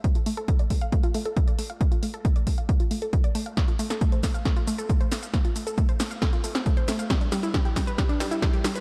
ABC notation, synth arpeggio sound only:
X:1
M:4/4
L:1/16
Q:1/4=136
K:Flyd
V:1 name="Synth arpeggio sound"
A, F A, A A, d A, f A, F A, A A, d A, f | A, F A, A A, d A, f A, F A, A A, d A, f | A, F A, A A, c A, f A, F A, A A, c A, f | A, F A, A A, c A, f A, F A, C A, c A, f |
G, D G, E G, G G, B G, D G, E G, G G, B |]